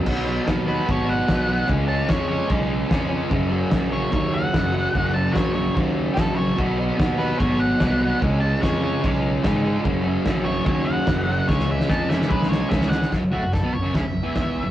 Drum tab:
CC |x---x---x---x---|x---x---x---x---|x---x---x---x---|x---x---x---x---|
SD |----o-------o---|----o-------o---|----o-------o---|----o-------o---|
FT |----------------|----------------|----------------|----------------|
BD |o---o---o---o---|o---o---o---o---|o---o---o---o---|o---o---o---o---|

CC |x---x---x---x---|x---x---x---x---|x---x---x---x---|----------------|
SD |----o-------o---|----o-------o---|----o-------o---|oo-oo-oo-oo-oooo|
FT |----------------|----------------|----------------|----------------|
BD |o---o---o---o---|o---o---o---o---|o---o---o---o---|o---o---o---o---|

CC |----------------|
SD |o---o---o---o---|
FT |o-o-o-o-o-o-o-o-|
BD |o---o---o---o---|